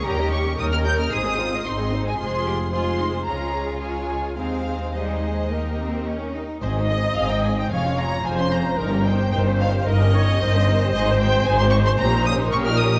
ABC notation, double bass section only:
X:1
M:4/4
L:1/8
Q:1/4=112
K:Ab
V:1 name="Double bass section" clef=bass
E,,2 E,,2 A,,,2 A,,,2 | F,,,4 D,,4 | E,,6- E,, z | A,,,2 A,,,2 F,,,2 F,,,2 |
G,,,2 G,,,2 G,,,2 G,,,2 | A,,,2 A,,,2 B,,,2 B,,,2 |]